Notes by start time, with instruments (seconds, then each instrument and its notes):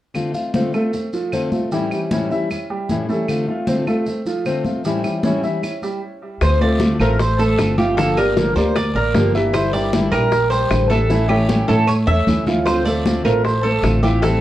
0.14 steel-string acoustic guitar D3 A3 C4 F4, high conga, claves, maracas
0.34 steel-string acoustic guitar A3 C4 F4, grand piano F4 F5, high conga, maracas
0.54 steel-string acoustic guitar D3 A3 C4 F4, grand piano C4 C5, high conga, maracas
0.73 grand piano A3 A4, steel-string acoustic guitar A3 C4 F4, high conga, claves, maracas
0.93 muted steel-string acoustic guitar stroke, high conga, maracas
1.13 grand piano F3 F4, high conga, maracas
1.32 steel-string acoustic guitar D3 A3 C4 F4, grand piano C4 C5, high conga, claves, maracas
1.52 steel-string acoustic guitar A3 C4 F4, high conga, maracas
1.72 steel-string acoustic guitar A2 E3 G3 C#4 E4, grand piano G3 G4, high conga, maracas
1.91 steel-string acoustic guitar G3 C#4 E4, high conga, claves, maracas
2.11 steel-string acoustic guitar A2 E3 G3 C#4 E4, grand piano C#4 C#5, high conga, maracas
2.31 steel-string acoustic guitar G3 C#4 E4, grand piano E4 E5, high conga, maracas
2.50 muted steel-string acoustic guitar stroke, high conga, claves, maracas
2.70 grand piano G3 G4, high conga
2.89 steel-string acoustic guitar A2 E3 G3 C#4 E4, high conga, maracas
3.08 steel-string acoustic guitar G3 C#4 E4, grand piano A3 A4, maracas
3.28 steel-string acoustic guitar D3 A3 C4 F4, high conga, claves, maracas
3.48 steel-string acoustic guitar A3 C4 F4, grand piano F4 F5, high conga
3.67 steel-string acoustic guitar D3 A3 C4 F4, grand piano C4 C5, high conga, maracas
3.87 grand piano A3 A4, steel-string acoustic guitar A3 C4 F4, high conga, claves, maracas
4.06 muted steel-string acoustic guitar stroke, high conga, maracas
4.26 grand piano F3 F4, high conga, maracas
4.45 steel-string acoustic guitar D3 A3 C4 F4, grand piano C4 C5, high conga, claves, maracas
4.65 steel-string acoustic guitar A3 C4 F4, high conga, maracas
4.84 steel-string acoustic guitar A2 E3 G3 C#4 E4, grand piano G3 G4, high conga, maracas
5.04 steel-string acoustic guitar G3 C#4 E4, high conga, claves, maracas
5.23 steel-string acoustic guitar A2 E3 G3 C#4 E4, grand piano C#4 C#5, high conga, maracas
5.43 steel-string acoustic guitar G3 C#4 E4, grand piano E4 E5, high conga, maracas
5.63 muted steel-string acoustic guitar stroke, high conga, claves, maracas
5.82 grand piano G3 G4, high conga, maracas
6.41 upright bass D2, steel-string acoustic guitar D3 A3 C4 F4, cuban tres C5, high bongo, high conga, long guiro, claves, maracas
6.61 grand piano A3 A4 C5, steel-string acoustic guitar A3 C4 F4, cuban tres D5, high conga
6.80 steel-string acoustic guitar D3 A3 C4 F4, high bongo, high conga, short guiro, maracas
6.99 upright bass A1, grand piano A3 A4 C5, steel-string acoustic guitar A3 C4 F4, cuban tres A#4, high conga, short guiro, claves, maracas
7.19 cuban tres C5, muted steel-string acoustic guitar stroke, high bongo, high conga, long guiro, maracas
7.39 grand piano A3 A4 C5, cuban tres A4, high conga, maracas
7.58 upright bass G1, steel-string acoustic guitar D3 A3 C4 F4, high bongo, low bongo, high conga, short guiro, claves, maracas
7.78 grand piano F3 F4 F5, steel-string acoustic guitar A3 C4 F4, cuban tres G4, high conga, short guiro, maracas
7.97 steel-string acoustic guitar D3 F3 A#3 D4 G4, grand piano F3 F4 F5, cuban tres A4, high bongo, high conga, long guiro, maracas
8.17 grand piano A#3 A#4 D5, steel-string acoustic guitar A#3 D4 G4, cuban tres A#4, high bongo, high conga, claves, maracas
8.36 steel-string acoustic guitar D3 F3 A#3 D4 G4, high bongo, high conga, short guiro, maracas
8.55 upright bass D2, grand piano A#3 A#4 D5, steel-string acoustic guitar A#3 D4 G4, cuban tres C5, high bongo, high conga, short guiro, maracas
8.76 cuban tres D5, muted steel-string acoustic guitar stroke, high bongo, high conga, long guiro, claves, maracas
8.94 upright bass A1, grand piano A#3 A#4 D5, cuban tres A#4, high conga
9.14 upright bass G1, steel-string acoustic guitar D3 F3 A#3 D4 G4, high bongo, low bongo, high conga, short guiro, maracas
9.34 grand piano E3 E4 E5, steel-string acoustic guitar A#3 D4 G4, high bongo, short guiro, maracas
9.53 steel-string acoustic guitar D3 G3 D4 E4, cuban tres C5, high bongo, high conga, long guiro, claves, maracas
9.73 grand piano G3 G4 A#4, steel-string acoustic guitar G3 D4 E4, cuban tres D5, high conga, maracas
9.93 steel-string acoustic guitar D3 G3 D4 E4, high bongo, high conga, short guiro, maracas
10.11 upright bass A#1, grand piano G3 G4 A#4, steel-string acoustic guitar G3 D4 E4, cuban tres A#4, high conga, short guiro, claves, maracas
10.32 muted steel-string acoustic guitar stroke, high bongo, high conga, long guiro, maracas
10.50 grand piano G3 G4 A#4, cuban tres C5, high conga, maracas
10.71 upright bass A1, steel-string acoustic guitar D3 G3 D4 E4, high bongo, low bongo, high conga, short guiro, claves, maracas
10.90 grand piano E3 E4 E5, steel-string acoustic guitar G3 D4 E4, cuban tres A4, high conga, short guiro, maracas
11.10 steel-string acoustic guitar E3 A3 C#4 E4, grand piano E3 E4 E5, high bongo, high conga, long guiro, maracas
11.29 grand piano A3 A4 C#5, steel-string acoustic guitar A3 C#4 E4, cuban tres G4, high bongo, high conga, claves
11.49 steel-string acoustic guitar E3 A3 C#4 E4, high bongo, high conga, short guiro, maracas
11.68 upright bass A2, grand piano A3 A4 C#5, steel-string acoustic guitar A3 C#4 E4, cuban tres A4, low bongo, high conga, short guiro, maracas
11.87 cuban tres C#5, muted steel-string acoustic guitar stroke, high conga, long guiro, claves, maracas
12.07 upright bass E2, grand piano A3 A4 C#5, cuban tres E5, low bongo, high conga
12.27 upright bass D2, steel-string acoustic guitar E3 A3 C#4 E4, low bongo, high conga, short guiro, maracas
12.46 grand piano F3 F4 F5, steel-string acoustic guitar A3 C#4 E4, low bongo, high conga, short guiro, maracas
12.65 steel-string acoustic guitar D3 A3 C4 F4, cuban tres C5, high bongo, high conga, long guiro, claves, maracas
12.85 grand piano A3 A4 C5, steel-string acoustic guitar A3 C4 F4, cuban tres D5, high conga, maracas
13.05 steel-string acoustic guitar D3 A3 C4 F4, high bongo, high conga, short guiro, maracas
13.24 upright bass A1, grand piano A3 A4 C5, steel-string acoustic guitar A3 C4 F4, cuban tres A#4, high conga, short guiro, claves, maracas
13.44 cuban tres C5, muted steel-string acoustic guitar stroke, high bongo, high conga, long guiro, maracas
13.63 grand piano A3 A4 C5, cuban tres A4, high conga
13.83 upright bass A1, steel-string acoustic guitar D3 A3 C4 F4, high bongo, low bongo, high conga, short guiro, claves, maracas
14.03 grand piano E3 E4 E5, steel-string acoustic guitar A3 C4 F4, cuban tres G4, high conga, short guiro, maracas
14.22 steel-string acoustic guitar E3 G3 C4 E4, grand piano E3 E4 E5, cuban tres A4, high bongo, high conga, long guiro, maracas